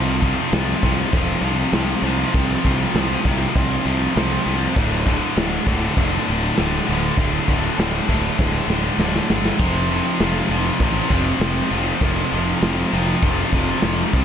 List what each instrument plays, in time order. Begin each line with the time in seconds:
Already playing: fingered electric bass C2, distorted electric guitar F2 C3 F3
0.22 distorted electric guitar F2 C3 F3, kick, crash
0.52 fingered electric bass C2, distorted electric guitar F2 C3 F3, snare, crash
0.83 fingered electric bass C2, distorted electric guitar F2 C3 F3, kick, crash
1.13 fingered electric bass E1, distorted electric guitar F2 C3 F3, kick, crash
1.41 fingered electric bass C2, distorted electric guitar F2 C3 F3, crash
1.72 fingered electric bass C2, distorted electric guitar F2 C3 F3, snare, crash
2.02 fingered electric bass C2, distorted electric guitar F2 C3 F3, crash
2.34 fingered electric bass C2, distorted electric guitar F2 C3 F3, kick, crash
2.65 fingered electric bass C2, distorted electric guitar F2 C3 F3, kick, crash
2.95 fingered electric bass C2, distorted electric guitar F2 C3 F3, snare, crash
3.25 fingered electric bass C2, distorted electric guitar F2 C3 F3, kick, crash
3.55 fingered electric bass C2, distorted electric guitar F2 C3 F3, kick, crash
3.85 fingered electric bass C2, distorted electric guitar F2 C3 F3, crash
4.15 fingered electric bass C2, distorted electric guitar F2 C3 F3, snare, crash
4.45 fingered electric bass C2, distorted electric guitar F2 C3 F3, crash
4.76 fingered electric bass D1, distorted electric guitar D2 A2 D3, kick, crash
5.07 distorted electric guitar D2 A2 D3, kick, crash
5.37 fingered electric bass D1, distorted electric guitar D2 A2 D3, snare, crash
5.66 fingered electric bass D1, distorted electric guitar D2 A2 D3, kick, crash
5.97 fingered electric bass F1, distorted electric guitar D2 A2 D3, kick, crash
6.26 fingered electric bass D1, distorted electric guitar D2 A2 D3, crash
6.57 fingered electric bass D1, distorted electric guitar D2 A2 D3, snare, crash
6.87 fingered electric bass D1, distorted electric guitar D2 A2 D3, crash
7.17 fingered electric bass D1, distorted electric guitar D2 A2 D3, kick, crash
7.48 fingered electric bass D1, distorted electric guitar D2 A2 D3, kick, crash
7.78 fingered electric bass D1, distorted electric guitar D2 A2 D3, snare, crash
8.08 fingered electric bass D1, distorted electric guitar D2 A2 D3, kick, crash
8.39 fingered electric bass D1, distorted electric guitar D2 A2 D3, kick, snare
8.68 fingered electric bass D1, distorted electric guitar D2 A2 D3, snare
8.98 fingered electric bass D1, distorted electric guitar D2 A2 D3, snare
9.16 snare
9.29 fingered electric bass G1, distorted electric guitar D2 A2 D3, snare
9.45 snare
9.59 fingered electric bass F1, distorted electric guitar F2 C3 F3, kick, crash
9.89 distorted electric guitar F2 C3 F3, crash
10.20 fingered electric bass F1, distorted electric guitar F2 C3 F3, snare, crash
10.49 fingered electric bass F1, distorted electric guitar F2 C3 F3, crash
10.80 fingered electric bass A1, distorted electric guitar F2 C3 F3, kick, crash
11.09 fingered electric bass F1, distorted electric guitar F2 C3 F3, kick, crash
11.40 fingered electric bass F1, distorted electric guitar F2 C3 F3, snare, crash
11.71 fingered electric bass F1, distorted electric guitar F2 C3 F3, crash
12.01 fingered electric bass F1, distorted electric guitar F2 C3 F3, kick, crash
12.32 fingered electric bass F1, distorted electric guitar F2 C3 F3, crash
12.62 fingered electric bass F1, distorted electric guitar F2 C3 F3, snare, crash
12.93 fingered electric bass F1, distorted electric guitar F2 C3 F3, crash
13.22 fingered electric bass F1, distorted electric guitar F2 C3 F3, kick, crash
13.52 fingered electric bass F1, distorted electric guitar F2 C3 F3, kick, crash
13.82 fingered electric bass F1, distorted electric guitar F2 C3 F3, snare, crash
14.13 fingered electric bass C2, distorted electric guitar C3 G3 C4, kick, crash